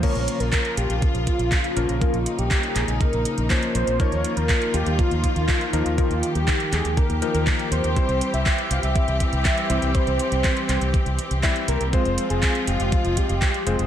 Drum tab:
CC |x---------------|----------------|----------------|----------------|
HH |xxxxxxxxxxxxxxxx|xxxxxxxxxxxxxxxx|xxxxxxxxxxxxxxxx|xxxxxxxxxxxxxxxx|
CP |----x-------x---|----x-x-----x---|----x-------x---|----x-x-----x---|
BD |o---o---o-o-o---|o---o---o---o---|o---o---o-o-o---|o---o---o---o---|

CC |----------------|----------------|----------------|
HH |xxxxxxxxxxxxxxxx|xxxxxxxxxxxxxxxx|xxxxxxxxxxxxxxxx|
CP |----x-------x---|----x-x-----x---|----x-------x---|
BD |o---o---o-o-o---|o---o---o---o---|o---o---o-o-o---|